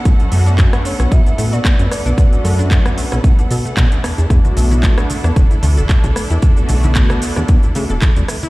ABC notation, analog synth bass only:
X:1
M:4/4
L:1/16
Q:"Swing 16ths" 1/4=113
K:Bm
V:1 name="Analog synth bass" clef=bass
B,,, z F,,2 z3 B,,, B,, z A,, B,, z F,, z B,,, | z2 F,,2 z2 B,,, B,,, B,,, z B,, B,, B,, z E,, E,, | E,, z B,,,2 z3 E,, E,,, z D,, E,,, z B,,, z E,, | z2 B,,,2 z2 E,, E,, E,, z C, E,,, z E,,, z2 |]